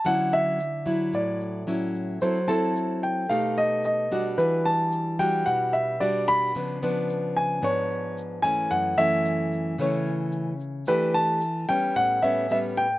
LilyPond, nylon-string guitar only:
\new Staff \with { instrumentName = "Nylon-string guitar" } { \time 4/4 \key d \major \tempo 4 = 111 << { <fis cis' e'>4 r8 <fis e'>4. <fis cis' e'>4 | <c' e' a'>8 <c' e' a'>4. <a dis' g'>4. <g d' fis'>8~ | <g d' fis'>4. <g d' fis'>4. <g d' fis'>4 | <eis b d'>8 <eis b d'>4. <eis b d'>4. <e a cis'>8~ |
<e a cis'>8 <e a cis'>4. <e a cis'>4. r8 | <a d' g'>4 r8 <g b cis'>4 <g b cis'>8 <g b cis'>8 r8 | } \\ { d2 a,2 | fis2 b,2 | e2 b,2 | cis2 gis,2 |
fis,2 cis2 | e2 a,2 | } >> }